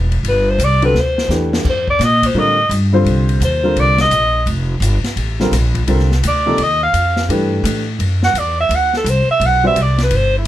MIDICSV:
0, 0, Header, 1, 6, 480
1, 0, Start_track
1, 0, Tempo, 352319
1, 338, Time_signature, 4, 2, 24, 8
1, 14268, End_track
2, 0, Start_track
2, 0, Title_t, "Alto saxophone"
2, 0, Program_c, 0, 65
2, 385, Note_on_c, 0, 71, 90
2, 676, Note_on_c, 0, 72, 94
2, 696, Note_off_c, 0, 71, 0
2, 877, Note_on_c, 0, 74, 107
2, 897, Note_off_c, 0, 72, 0
2, 1146, Note_off_c, 0, 74, 0
2, 1154, Note_on_c, 0, 71, 92
2, 1354, Note_on_c, 0, 72, 86
2, 1374, Note_off_c, 0, 71, 0
2, 1805, Note_off_c, 0, 72, 0
2, 2304, Note_on_c, 0, 72, 84
2, 2568, Note_off_c, 0, 72, 0
2, 2588, Note_on_c, 0, 74, 89
2, 2771, Note_on_c, 0, 75, 99
2, 2792, Note_off_c, 0, 74, 0
2, 3079, Note_on_c, 0, 72, 79
2, 3099, Note_off_c, 0, 75, 0
2, 3251, Note_on_c, 0, 75, 97
2, 3271, Note_off_c, 0, 72, 0
2, 3714, Note_off_c, 0, 75, 0
2, 4692, Note_on_c, 0, 72, 91
2, 5173, Note_on_c, 0, 74, 102
2, 5193, Note_off_c, 0, 72, 0
2, 5453, Note_off_c, 0, 74, 0
2, 5461, Note_on_c, 0, 75, 101
2, 6060, Note_off_c, 0, 75, 0
2, 8553, Note_on_c, 0, 74, 80
2, 9027, Note_on_c, 0, 75, 90
2, 9047, Note_off_c, 0, 74, 0
2, 9298, Note_off_c, 0, 75, 0
2, 9306, Note_on_c, 0, 77, 92
2, 9902, Note_off_c, 0, 77, 0
2, 11228, Note_on_c, 0, 78, 102
2, 11422, Note_on_c, 0, 74, 83
2, 11443, Note_off_c, 0, 78, 0
2, 11705, Note_off_c, 0, 74, 0
2, 11724, Note_on_c, 0, 76, 99
2, 11924, Note_on_c, 0, 78, 107
2, 11944, Note_off_c, 0, 76, 0
2, 12196, Note_off_c, 0, 78, 0
2, 12218, Note_on_c, 0, 69, 85
2, 12393, Note_on_c, 0, 72, 95
2, 12414, Note_off_c, 0, 69, 0
2, 12671, Note_off_c, 0, 72, 0
2, 12677, Note_on_c, 0, 76, 106
2, 12888, Note_on_c, 0, 78, 115
2, 12908, Note_off_c, 0, 76, 0
2, 13158, Note_off_c, 0, 78, 0
2, 13172, Note_on_c, 0, 76, 109
2, 13371, Note_on_c, 0, 74, 86
2, 13391, Note_off_c, 0, 76, 0
2, 13639, Note_off_c, 0, 74, 0
2, 13665, Note_on_c, 0, 71, 90
2, 13838, Note_on_c, 0, 72, 106
2, 13858, Note_off_c, 0, 71, 0
2, 14112, Note_off_c, 0, 72, 0
2, 14141, Note_on_c, 0, 64, 59
2, 14268, Note_off_c, 0, 64, 0
2, 14268, End_track
3, 0, Start_track
3, 0, Title_t, "Upright piano"
3, 0, Program_c, 1, 0
3, 1119, Note_on_c, 1, 50, 76
3, 1124, Note_on_c, 1, 55, 66
3, 1130, Note_on_c, 1, 60, 68
3, 1134, Note_on_c, 1, 66, 61
3, 1137, Note_on_c, 1, 69, 78
3, 1277, Note_off_c, 1, 50, 0
3, 1280, Note_off_c, 1, 55, 0
3, 1283, Note_off_c, 1, 60, 0
3, 1285, Note_off_c, 1, 66, 0
3, 1287, Note_off_c, 1, 69, 0
3, 1775, Note_on_c, 1, 52, 60
3, 1779, Note_on_c, 1, 57, 57
3, 1779, Note_on_c, 1, 62, 60
3, 1786, Note_on_c, 1, 67, 60
3, 1795, Note_on_c, 1, 71, 64
3, 2256, Note_off_c, 1, 52, 0
3, 2258, Note_off_c, 1, 57, 0
3, 2258, Note_off_c, 1, 62, 0
3, 2262, Note_off_c, 1, 67, 0
3, 2266, Note_off_c, 1, 71, 0
3, 3199, Note_on_c, 1, 50, 73
3, 3200, Note_on_c, 1, 55, 63
3, 3207, Note_on_c, 1, 60, 59
3, 3209, Note_on_c, 1, 65, 64
3, 3215, Note_on_c, 1, 70, 73
3, 3484, Note_off_c, 1, 50, 0
3, 3485, Note_off_c, 1, 55, 0
3, 3488, Note_off_c, 1, 60, 0
3, 3490, Note_off_c, 1, 65, 0
3, 3493, Note_off_c, 1, 70, 0
3, 3985, Note_on_c, 1, 50, 78
3, 3988, Note_on_c, 1, 55, 74
3, 3994, Note_on_c, 1, 60, 82
3, 4000, Note_on_c, 1, 65, 87
3, 4003, Note_on_c, 1, 72, 94
3, 4613, Note_off_c, 1, 50, 0
3, 4615, Note_off_c, 1, 55, 0
3, 4617, Note_off_c, 1, 60, 0
3, 4620, Note_off_c, 1, 65, 0
3, 4622, Note_off_c, 1, 72, 0
3, 4950, Note_on_c, 1, 50, 74
3, 4951, Note_on_c, 1, 55, 60
3, 4955, Note_on_c, 1, 60, 65
3, 4959, Note_on_c, 1, 65, 70
3, 4964, Note_on_c, 1, 70, 75
3, 5575, Note_off_c, 1, 50, 0
3, 5576, Note_off_c, 1, 55, 0
3, 5578, Note_off_c, 1, 60, 0
3, 5580, Note_off_c, 1, 65, 0
3, 5583, Note_off_c, 1, 70, 0
3, 7353, Note_on_c, 1, 50, 69
3, 7361, Note_on_c, 1, 55, 73
3, 7365, Note_on_c, 1, 65, 68
3, 7366, Note_on_c, 1, 60, 72
3, 7376, Note_on_c, 1, 70, 85
3, 7514, Note_off_c, 1, 50, 0
3, 7518, Note_off_c, 1, 55, 0
3, 7520, Note_off_c, 1, 65, 0
3, 7521, Note_off_c, 1, 60, 0
3, 7526, Note_off_c, 1, 70, 0
3, 8007, Note_on_c, 1, 50, 66
3, 8007, Note_on_c, 1, 55, 66
3, 8012, Note_on_c, 1, 60, 66
3, 8018, Note_on_c, 1, 65, 66
3, 8023, Note_on_c, 1, 70, 72
3, 8288, Note_off_c, 1, 50, 0
3, 8288, Note_off_c, 1, 55, 0
3, 8290, Note_off_c, 1, 60, 0
3, 8293, Note_off_c, 1, 65, 0
3, 8296, Note_off_c, 1, 70, 0
3, 8800, Note_on_c, 1, 48, 75
3, 8807, Note_on_c, 1, 53, 59
3, 8807, Note_on_c, 1, 58, 62
3, 8814, Note_on_c, 1, 69, 82
3, 8819, Note_on_c, 1, 63, 63
3, 8957, Note_off_c, 1, 48, 0
3, 8961, Note_off_c, 1, 53, 0
3, 8961, Note_off_c, 1, 58, 0
3, 8964, Note_off_c, 1, 69, 0
3, 8967, Note_off_c, 1, 63, 0
3, 9938, Note_on_c, 1, 52, 62
3, 9941, Note_on_c, 1, 57, 66
3, 9943, Note_on_c, 1, 62, 64
3, 9948, Note_on_c, 1, 67, 66
3, 9954, Note_on_c, 1, 71, 69
3, 10662, Note_off_c, 1, 52, 0
3, 10663, Note_off_c, 1, 57, 0
3, 10665, Note_off_c, 1, 62, 0
3, 10667, Note_off_c, 1, 67, 0
3, 10670, Note_off_c, 1, 71, 0
3, 13125, Note_on_c, 1, 55, 74
3, 13133, Note_on_c, 1, 60, 68
3, 13139, Note_on_c, 1, 66, 69
3, 13142, Note_on_c, 1, 71, 59
3, 13145, Note_on_c, 1, 74, 81
3, 13279, Note_off_c, 1, 55, 0
3, 13282, Note_off_c, 1, 60, 0
3, 13285, Note_off_c, 1, 66, 0
3, 13287, Note_off_c, 1, 71, 0
3, 13288, Note_off_c, 1, 74, 0
3, 14268, End_track
4, 0, Start_track
4, 0, Title_t, "Upright bass"
4, 0, Program_c, 2, 32
4, 0, Note_on_c, 2, 28, 89
4, 305, Note_off_c, 2, 28, 0
4, 314, Note_on_c, 2, 31, 84
4, 788, Note_off_c, 2, 31, 0
4, 796, Note_on_c, 2, 36, 93
4, 1269, Note_off_c, 2, 36, 0
4, 1277, Note_on_c, 2, 38, 84
4, 1742, Note_off_c, 2, 38, 0
4, 1750, Note_on_c, 2, 40, 92
4, 2229, Note_off_c, 2, 40, 0
4, 2243, Note_on_c, 2, 41, 80
4, 2701, Note_off_c, 2, 41, 0
4, 2709, Note_on_c, 2, 46, 104
4, 3182, Note_off_c, 2, 46, 0
4, 3190, Note_on_c, 2, 45, 88
4, 3663, Note_off_c, 2, 45, 0
4, 3671, Note_on_c, 2, 43, 97
4, 4141, Note_off_c, 2, 43, 0
4, 4150, Note_on_c, 2, 36, 85
4, 4629, Note_off_c, 2, 36, 0
4, 4634, Note_on_c, 2, 39, 96
4, 5111, Note_off_c, 2, 39, 0
4, 5123, Note_on_c, 2, 36, 88
4, 5584, Note_off_c, 2, 36, 0
4, 5592, Note_on_c, 2, 34, 92
4, 6070, Note_off_c, 2, 34, 0
4, 6075, Note_on_c, 2, 29, 92
4, 6532, Note_off_c, 2, 29, 0
4, 6540, Note_on_c, 2, 31, 104
4, 6843, Note_off_c, 2, 31, 0
4, 7031, Note_on_c, 2, 33, 86
4, 7504, Note_off_c, 2, 33, 0
4, 7512, Note_on_c, 2, 34, 93
4, 7990, Note_off_c, 2, 34, 0
4, 8000, Note_on_c, 2, 36, 93
4, 8473, Note_off_c, 2, 36, 0
4, 8489, Note_on_c, 2, 38, 100
4, 8958, Note_off_c, 2, 38, 0
4, 8967, Note_on_c, 2, 39, 88
4, 9437, Note_off_c, 2, 39, 0
4, 9444, Note_on_c, 2, 41, 87
4, 9915, Note_off_c, 2, 41, 0
4, 9926, Note_on_c, 2, 43, 89
4, 10396, Note_off_c, 2, 43, 0
4, 10404, Note_on_c, 2, 45, 106
4, 10875, Note_off_c, 2, 45, 0
4, 10884, Note_on_c, 2, 42, 90
4, 11347, Note_off_c, 2, 42, 0
4, 11355, Note_on_c, 2, 40, 92
4, 11830, Note_off_c, 2, 40, 0
4, 11841, Note_on_c, 2, 38, 93
4, 12313, Note_off_c, 2, 38, 0
4, 12321, Note_on_c, 2, 36, 98
4, 12613, Note_off_c, 2, 36, 0
4, 12804, Note_on_c, 2, 35, 93
4, 13274, Note_off_c, 2, 35, 0
4, 13288, Note_on_c, 2, 36, 87
4, 13756, Note_off_c, 2, 36, 0
4, 13772, Note_on_c, 2, 31, 85
4, 14238, Note_off_c, 2, 31, 0
4, 14268, End_track
5, 0, Start_track
5, 0, Title_t, "Muted upright bass strokes"
5, 6860, Note_on_c, 9, 29, 35
5, 6996, Note_off_c, 9, 29, 0
5, 12632, Note_on_c, 9, 29, 36
5, 12769, Note_off_c, 9, 29, 0
5, 14268, End_track
6, 0, Start_track
6, 0, Title_t, "Drums"
6, 160, Note_on_c, 9, 51, 45
6, 296, Note_off_c, 9, 51, 0
6, 335, Note_on_c, 9, 51, 64
6, 471, Note_off_c, 9, 51, 0
6, 811, Note_on_c, 9, 44, 64
6, 811, Note_on_c, 9, 51, 69
6, 947, Note_off_c, 9, 44, 0
6, 947, Note_off_c, 9, 51, 0
6, 1121, Note_on_c, 9, 51, 44
6, 1257, Note_off_c, 9, 51, 0
6, 1290, Note_on_c, 9, 38, 48
6, 1426, Note_off_c, 9, 38, 0
6, 1608, Note_on_c, 9, 38, 70
6, 1744, Note_off_c, 9, 38, 0
6, 1771, Note_on_c, 9, 38, 54
6, 1773, Note_on_c, 9, 44, 53
6, 1907, Note_off_c, 9, 38, 0
6, 1910, Note_off_c, 9, 44, 0
6, 2088, Note_on_c, 9, 38, 92
6, 2224, Note_off_c, 9, 38, 0
6, 2246, Note_on_c, 9, 36, 78
6, 2248, Note_on_c, 9, 49, 73
6, 2382, Note_off_c, 9, 36, 0
6, 2384, Note_off_c, 9, 49, 0
6, 2555, Note_on_c, 9, 36, 54
6, 2691, Note_off_c, 9, 36, 0
6, 2732, Note_on_c, 9, 38, 40
6, 2734, Note_on_c, 9, 44, 64
6, 2734, Note_on_c, 9, 51, 70
6, 2868, Note_off_c, 9, 38, 0
6, 2871, Note_off_c, 9, 44, 0
6, 2871, Note_off_c, 9, 51, 0
6, 3032, Note_on_c, 9, 36, 49
6, 3040, Note_on_c, 9, 51, 69
6, 3168, Note_off_c, 9, 36, 0
6, 3177, Note_off_c, 9, 51, 0
6, 3691, Note_on_c, 9, 44, 50
6, 3691, Note_on_c, 9, 51, 67
6, 3828, Note_off_c, 9, 44, 0
6, 3828, Note_off_c, 9, 51, 0
6, 4174, Note_on_c, 9, 51, 58
6, 4310, Note_off_c, 9, 51, 0
6, 4481, Note_on_c, 9, 51, 48
6, 4617, Note_off_c, 9, 51, 0
6, 4653, Note_on_c, 9, 44, 64
6, 4653, Note_on_c, 9, 51, 68
6, 4789, Note_off_c, 9, 44, 0
6, 4789, Note_off_c, 9, 51, 0
6, 5130, Note_on_c, 9, 51, 58
6, 5266, Note_off_c, 9, 51, 0
6, 5423, Note_on_c, 9, 38, 61
6, 5426, Note_on_c, 9, 51, 47
6, 5560, Note_off_c, 9, 38, 0
6, 5562, Note_off_c, 9, 51, 0
6, 5600, Note_on_c, 9, 44, 60
6, 5600, Note_on_c, 9, 51, 59
6, 5737, Note_off_c, 9, 44, 0
6, 5737, Note_off_c, 9, 51, 0
6, 6086, Note_on_c, 9, 51, 59
6, 6222, Note_off_c, 9, 51, 0
6, 6568, Note_on_c, 9, 44, 67
6, 6568, Note_on_c, 9, 51, 77
6, 6704, Note_off_c, 9, 44, 0
6, 6704, Note_off_c, 9, 51, 0
6, 6869, Note_on_c, 9, 38, 50
6, 6871, Note_on_c, 9, 51, 50
6, 7005, Note_off_c, 9, 38, 0
6, 7008, Note_off_c, 9, 51, 0
6, 7042, Note_on_c, 9, 51, 62
6, 7178, Note_off_c, 9, 51, 0
6, 7353, Note_on_c, 9, 38, 53
6, 7489, Note_off_c, 9, 38, 0
6, 7528, Note_on_c, 9, 38, 33
6, 7531, Note_on_c, 9, 44, 52
6, 7531, Note_on_c, 9, 51, 75
6, 7664, Note_off_c, 9, 38, 0
6, 7667, Note_off_c, 9, 44, 0
6, 7667, Note_off_c, 9, 51, 0
6, 7830, Note_on_c, 9, 36, 57
6, 7833, Note_on_c, 9, 51, 50
6, 7966, Note_off_c, 9, 36, 0
6, 7970, Note_off_c, 9, 51, 0
6, 8005, Note_on_c, 9, 51, 65
6, 8141, Note_off_c, 9, 51, 0
6, 8161, Note_on_c, 9, 38, 27
6, 8297, Note_off_c, 9, 38, 0
6, 8331, Note_on_c, 9, 38, 48
6, 8467, Note_off_c, 9, 38, 0
6, 8495, Note_on_c, 9, 44, 56
6, 8495, Note_on_c, 9, 51, 76
6, 8631, Note_off_c, 9, 44, 0
6, 8631, Note_off_c, 9, 51, 0
6, 8965, Note_on_c, 9, 51, 65
6, 9101, Note_off_c, 9, 51, 0
6, 9452, Note_on_c, 9, 44, 42
6, 9452, Note_on_c, 9, 51, 62
6, 9589, Note_off_c, 9, 44, 0
6, 9589, Note_off_c, 9, 51, 0
6, 9761, Note_on_c, 9, 38, 58
6, 9897, Note_off_c, 9, 38, 0
6, 9944, Note_on_c, 9, 51, 66
6, 10080, Note_off_c, 9, 51, 0
6, 10425, Note_on_c, 9, 44, 69
6, 10425, Note_on_c, 9, 51, 77
6, 10562, Note_off_c, 9, 44, 0
6, 10562, Note_off_c, 9, 51, 0
6, 10896, Note_on_c, 9, 51, 59
6, 11033, Note_off_c, 9, 51, 0
6, 11206, Note_on_c, 9, 38, 60
6, 11343, Note_off_c, 9, 38, 0
6, 11379, Note_on_c, 9, 44, 47
6, 11379, Note_on_c, 9, 51, 67
6, 11515, Note_off_c, 9, 44, 0
6, 11515, Note_off_c, 9, 51, 0
6, 11861, Note_on_c, 9, 51, 66
6, 11998, Note_off_c, 9, 51, 0
6, 12171, Note_on_c, 9, 38, 43
6, 12308, Note_off_c, 9, 38, 0
6, 12345, Note_on_c, 9, 44, 56
6, 12345, Note_on_c, 9, 51, 68
6, 12482, Note_off_c, 9, 44, 0
6, 12482, Note_off_c, 9, 51, 0
6, 12824, Note_on_c, 9, 51, 59
6, 12961, Note_off_c, 9, 51, 0
6, 13298, Note_on_c, 9, 44, 59
6, 13298, Note_on_c, 9, 51, 62
6, 13434, Note_off_c, 9, 44, 0
6, 13434, Note_off_c, 9, 51, 0
6, 13601, Note_on_c, 9, 38, 65
6, 13603, Note_on_c, 9, 51, 52
6, 13737, Note_off_c, 9, 38, 0
6, 13740, Note_off_c, 9, 51, 0
6, 13768, Note_on_c, 9, 51, 66
6, 13905, Note_off_c, 9, 51, 0
6, 14268, End_track
0, 0, End_of_file